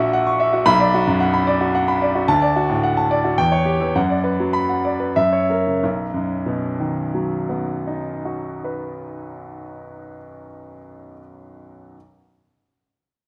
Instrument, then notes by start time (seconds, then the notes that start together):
grand piano
Already playing: A#1 A#2 E5 F#5 C#6
0.00 F#4
0.13 F#5
0.27 C#6
0.40 E5
0.53 F#4
0.66 B1 B5
0.80 D5
0.94 F#4
1.07 F#2
1.20 F#5
1.33 B5
1.47 D5
1.61 F#4
1.75 F#5
1.88 B5
2.02 D5
2.15 F#4
2.28 D2 A5
2.42 D5
2.56 F#4
2.70 A2
2.83 F#5
2.97 A5
3.11 D5
3.24 F#4
3.38 E2 G5
3.52 C#5
3.65 G4
3.80 E3
3.95 F#2 F#5
4.10 D5
4.24 B4
4.40 F#3
4.53 B5
4.69 F#5
4.85 D5
5.00 B4
5.16 F#2 E5
5.33 C#5
5.50 A#4
5.67 C#3
5.83 B1
6.14 F#2
6.46 B2
6.80 D#3
7.14 F#3
7.49 B3
7.87 D#4
8.25 F#4
8.64 B4